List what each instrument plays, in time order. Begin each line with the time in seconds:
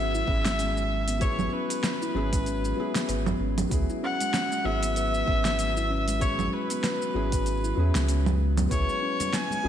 Already playing: sub bass G#1, felt piano F#3 B3 E4 G#4, kamancheh E5
0.14 steel tongue drum E4, shaker
0.25 sub bass G#1, felt piano F#3 B3 E4, steel tongue drum C#4, kick
0.29 felt piano G#4
0.45 steel tongue drum G#3, snare, open hi-hat, shaker
0.59 steel tongue drum C#4, open hi-hat, shaker
0.77 shaker
1.08 steel tongue drum B3, open hi-hat, shaker
1.19 felt piano F#3 B3 E4 G#4, steel tongue drum B4, kamancheh C#5, kick, open hi-hat, shaker
1.39 low conga, shaker
1.53 steel tongue drum C#4, kamancheh B4
1.70 open hi-hat, shaker
1.84 snare, open hi-hat, shaker
2.02 steel tongue drum E4, shaker
2.15 sub bass G#1, felt piano F#3 B3 E4 G#4, steel tongue drum C#4
2.33 steel tongue drum G#3, kick, open hi-hat, shaker
2.46 steel tongue drum C#4, open hi-hat, shaker
2.65 shaker
2.76 felt piano F#3 B3 E4 G#4
2.95 steel tongue drum B3, snare, open hi-hat, shaker
3.09 sub bass G#1, steel tongue drum B4, open hi-hat, shaker
3.26 low conga, shaker
3.40 sub bass G#1, steel tongue drum C#4
3.58 open hi-hat, low conga, shaker
3.69 sub bass C#2, felt piano F#3 B3 E4, kick, open hi-hat, shaker
3.74 felt piano G#4
3.90 steel tongue drum E4, shaker
4.03 steel tongue drum C#4, kamancheh F#5
4.21 steel tongue drum G#3, open hi-hat, shaker
4.34 steel tongue drum C#4, snare, open hi-hat, shaker
4.52 shaker
4.64 sub bass G#1, felt piano F#3 B3 E4 G#4, kamancheh E5
4.83 steel tongue drum B3, open hi-hat, shaker
4.96 steel tongue drum B4, open hi-hat, shaker
5.14 shaker
5.26 sub bass G#1, felt piano F#3 B3 E4, steel tongue drum C#4, kick
5.30 felt piano G#4
5.45 snare, open hi-hat, shaker
5.59 open hi-hat, shaker
5.77 steel tongue drum E4, shaker
5.90 steel tongue drum C#4
6.08 steel tongue drum G#3, open hi-hat, shaker
6.19 felt piano F#3 B3 E4 G#4, steel tongue drum C#4, kamancheh C#5, kick, open hi-hat, shaker
6.39 low conga, shaker
6.53 kamancheh B4
6.70 steel tongue drum B3, open hi-hat, shaker
6.84 steel tongue drum B4, snare, open hi-hat, shaker
7.02 shaker
7.14 sub bass G#1, felt piano F#3 B3 E4 G#4, steel tongue drum C#4
7.32 kick, open hi-hat, shaker
7.46 open hi-hat, shaker
7.64 steel tongue drum E4, shaker
7.75 sub bass E2, felt piano F#3 B3 E4, steel tongue drum C#4
7.80 felt piano G#4
7.95 sub bass C#2, steel tongue drum G#3, snare, open hi-hat, shaker
8.08 steel tongue drum C#4, open hi-hat, shaker
8.26 low conga, shaker
8.57 steel tongue drum B3, open hi-hat, low conga, shaker
8.69 sub bass C#2, felt piano F#3 B3 E4, steel tongue drum B4, kamancheh C#5, kick, open hi-hat, shaker
8.73 felt piano G#4
8.89 shaker
9.02 steel tongue drum C#4
9.20 open hi-hat, muted conga, low conga, shaker
9.33 kamancheh G#5, snare, open hi-hat, shaker
9.50 steel tongue drum G#3, muted conga, high conga, shaker
9.63 sub bass G#1, felt piano F#3 B3 E4, steel tongue drum C#4